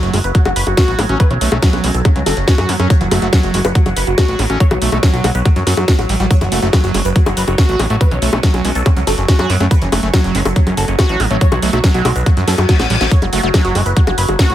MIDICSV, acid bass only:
0, 0, Header, 1, 2, 480
1, 0, Start_track
1, 0, Key_signature, 3, "minor"
1, 0, Tempo, 425532
1, 1354, Time_signature, 4, 2, 24, 8
1, 16410, End_track
2, 0, Start_track
2, 0, Title_t, "Acid bass"
2, 0, Program_c, 0, 38
2, 0, Note_on_c, 0, 54, 84
2, 153, Note_on_c, 0, 57, 77
2, 170, Note_off_c, 0, 54, 0
2, 217, Note_off_c, 0, 57, 0
2, 393, Note_on_c, 0, 54, 85
2, 432, Note_off_c, 0, 54, 0
2, 513, Note_on_c, 0, 54, 98
2, 552, Note_off_c, 0, 54, 0
2, 873, Note_on_c, 0, 66, 82
2, 1113, Note_on_c, 0, 57, 80
2, 1130, Note_off_c, 0, 66, 0
2, 1177, Note_off_c, 0, 57, 0
2, 1233, Note_on_c, 0, 61, 100
2, 1330, Note_off_c, 0, 61, 0
2, 1353, Note_on_c, 0, 54, 87
2, 1392, Note_off_c, 0, 54, 0
2, 1473, Note_on_c, 0, 52, 75
2, 1512, Note_off_c, 0, 52, 0
2, 1593, Note_on_c, 0, 57, 78
2, 1690, Note_off_c, 0, 57, 0
2, 1713, Note_on_c, 0, 57, 77
2, 1777, Note_off_c, 0, 57, 0
2, 1833, Note_on_c, 0, 54, 86
2, 2073, Note_on_c, 0, 57, 78
2, 2090, Note_off_c, 0, 54, 0
2, 2138, Note_off_c, 0, 57, 0
2, 2314, Note_on_c, 0, 54, 83
2, 2352, Note_off_c, 0, 54, 0
2, 2433, Note_on_c, 0, 54, 102
2, 2472, Note_off_c, 0, 54, 0
2, 2793, Note_on_c, 0, 66, 78
2, 3034, Note_on_c, 0, 57, 79
2, 3050, Note_off_c, 0, 66, 0
2, 3098, Note_off_c, 0, 57, 0
2, 3154, Note_on_c, 0, 61, 102
2, 3250, Note_off_c, 0, 61, 0
2, 3274, Note_on_c, 0, 54, 88
2, 3312, Note_off_c, 0, 54, 0
2, 3394, Note_on_c, 0, 52, 79
2, 3432, Note_off_c, 0, 52, 0
2, 3514, Note_on_c, 0, 57, 80
2, 3610, Note_off_c, 0, 57, 0
2, 3634, Note_on_c, 0, 57, 82
2, 3698, Note_off_c, 0, 57, 0
2, 3754, Note_on_c, 0, 54, 83
2, 3994, Note_on_c, 0, 57, 79
2, 4011, Note_off_c, 0, 54, 0
2, 4058, Note_off_c, 0, 57, 0
2, 4233, Note_on_c, 0, 54, 84
2, 4272, Note_off_c, 0, 54, 0
2, 4353, Note_on_c, 0, 54, 102
2, 4392, Note_off_c, 0, 54, 0
2, 4714, Note_on_c, 0, 66, 82
2, 4954, Note_on_c, 0, 57, 81
2, 4971, Note_off_c, 0, 66, 0
2, 5018, Note_off_c, 0, 57, 0
2, 5074, Note_on_c, 0, 61, 106
2, 5170, Note_off_c, 0, 61, 0
2, 5194, Note_on_c, 0, 54, 86
2, 5232, Note_off_c, 0, 54, 0
2, 5314, Note_on_c, 0, 52, 77
2, 5352, Note_off_c, 0, 52, 0
2, 5434, Note_on_c, 0, 57, 79
2, 5530, Note_off_c, 0, 57, 0
2, 5554, Note_on_c, 0, 57, 81
2, 5618, Note_off_c, 0, 57, 0
2, 5673, Note_on_c, 0, 54, 82
2, 5913, Note_on_c, 0, 57, 77
2, 5930, Note_off_c, 0, 54, 0
2, 5978, Note_off_c, 0, 57, 0
2, 6154, Note_on_c, 0, 54, 86
2, 6192, Note_off_c, 0, 54, 0
2, 6273, Note_on_c, 0, 54, 102
2, 6312, Note_off_c, 0, 54, 0
2, 6634, Note_on_c, 0, 57, 84
2, 6672, Note_off_c, 0, 57, 0
2, 6874, Note_on_c, 0, 55, 80
2, 6938, Note_off_c, 0, 55, 0
2, 6993, Note_on_c, 0, 55, 103
2, 7058, Note_off_c, 0, 55, 0
2, 7114, Note_on_c, 0, 54, 85
2, 7152, Note_off_c, 0, 54, 0
2, 7234, Note_on_c, 0, 52, 78
2, 7272, Note_off_c, 0, 52, 0
2, 7353, Note_on_c, 0, 57, 76
2, 7450, Note_off_c, 0, 57, 0
2, 7474, Note_on_c, 0, 57, 81
2, 7538, Note_off_c, 0, 57, 0
2, 7594, Note_on_c, 0, 54, 83
2, 7834, Note_on_c, 0, 57, 78
2, 7851, Note_off_c, 0, 54, 0
2, 7898, Note_off_c, 0, 57, 0
2, 8074, Note_on_c, 0, 54, 86
2, 8112, Note_off_c, 0, 54, 0
2, 8194, Note_on_c, 0, 54, 101
2, 8232, Note_off_c, 0, 54, 0
2, 8553, Note_on_c, 0, 66, 82
2, 8793, Note_on_c, 0, 57, 78
2, 8810, Note_off_c, 0, 66, 0
2, 8858, Note_off_c, 0, 57, 0
2, 8913, Note_on_c, 0, 57, 76
2, 8977, Note_off_c, 0, 57, 0
2, 9033, Note_on_c, 0, 54, 82
2, 9072, Note_off_c, 0, 54, 0
2, 9153, Note_on_c, 0, 52, 79
2, 9192, Note_off_c, 0, 52, 0
2, 9273, Note_on_c, 0, 57, 77
2, 9370, Note_off_c, 0, 57, 0
2, 9393, Note_on_c, 0, 57, 80
2, 9457, Note_off_c, 0, 57, 0
2, 9513, Note_on_c, 0, 54, 85
2, 9753, Note_on_c, 0, 57, 81
2, 9770, Note_off_c, 0, 54, 0
2, 9818, Note_off_c, 0, 57, 0
2, 9993, Note_on_c, 0, 54, 85
2, 10032, Note_off_c, 0, 54, 0
2, 10113, Note_on_c, 0, 54, 100
2, 10152, Note_off_c, 0, 54, 0
2, 10473, Note_on_c, 0, 66, 81
2, 10713, Note_on_c, 0, 57, 78
2, 10730, Note_off_c, 0, 66, 0
2, 10777, Note_off_c, 0, 57, 0
2, 10833, Note_on_c, 0, 57, 78
2, 10897, Note_off_c, 0, 57, 0
2, 10953, Note_on_c, 0, 54, 84
2, 10992, Note_off_c, 0, 54, 0
2, 11073, Note_on_c, 0, 52, 78
2, 11112, Note_off_c, 0, 52, 0
2, 11193, Note_on_c, 0, 57, 77
2, 11289, Note_off_c, 0, 57, 0
2, 11313, Note_on_c, 0, 57, 78
2, 11377, Note_off_c, 0, 57, 0
2, 11433, Note_on_c, 0, 54, 81
2, 11673, Note_on_c, 0, 57, 77
2, 11690, Note_off_c, 0, 54, 0
2, 11737, Note_off_c, 0, 57, 0
2, 11913, Note_on_c, 0, 54, 85
2, 11952, Note_off_c, 0, 54, 0
2, 12033, Note_on_c, 0, 54, 102
2, 12072, Note_off_c, 0, 54, 0
2, 12393, Note_on_c, 0, 66, 81
2, 12633, Note_on_c, 0, 57, 78
2, 12650, Note_off_c, 0, 66, 0
2, 12697, Note_off_c, 0, 57, 0
2, 12753, Note_on_c, 0, 57, 78
2, 12817, Note_off_c, 0, 57, 0
2, 12873, Note_on_c, 0, 54, 88
2, 12912, Note_off_c, 0, 54, 0
2, 12993, Note_on_c, 0, 52, 77
2, 13032, Note_off_c, 0, 52, 0
2, 13113, Note_on_c, 0, 57, 79
2, 13210, Note_off_c, 0, 57, 0
2, 13233, Note_on_c, 0, 57, 80
2, 13297, Note_off_c, 0, 57, 0
2, 13353, Note_on_c, 0, 54, 82
2, 13593, Note_on_c, 0, 57, 79
2, 13610, Note_off_c, 0, 54, 0
2, 13657, Note_off_c, 0, 57, 0
2, 13833, Note_on_c, 0, 54, 83
2, 13872, Note_off_c, 0, 54, 0
2, 13953, Note_on_c, 0, 54, 99
2, 13992, Note_off_c, 0, 54, 0
2, 14313, Note_on_c, 0, 54, 81
2, 14410, Note_off_c, 0, 54, 0
2, 14553, Note_on_c, 0, 55, 80
2, 14618, Note_off_c, 0, 55, 0
2, 14673, Note_on_c, 0, 57, 79
2, 14737, Note_off_c, 0, 57, 0
2, 14794, Note_on_c, 0, 54, 87
2, 14832, Note_off_c, 0, 54, 0
2, 14914, Note_on_c, 0, 55, 103
2, 14952, Note_off_c, 0, 55, 0
2, 15033, Note_on_c, 0, 57, 78
2, 15130, Note_off_c, 0, 57, 0
2, 15154, Note_on_c, 0, 57, 82
2, 15218, Note_off_c, 0, 57, 0
2, 15273, Note_on_c, 0, 54, 85
2, 15513, Note_on_c, 0, 57, 78
2, 15530, Note_off_c, 0, 54, 0
2, 15577, Note_off_c, 0, 57, 0
2, 15754, Note_on_c, 0, 54, 85
2, 15792, Note_off_c, 0, 54, 0
2, 15873, Note_on_c, 0, 54, 98
2, 15912, Note_off_c, 0, 54, 0
2, 16233, Note_on_c, 0, 66, 82
2, 16410, Note_off_c, 0, 66, 0
2, 16410, End_track
0, 0, End_of_file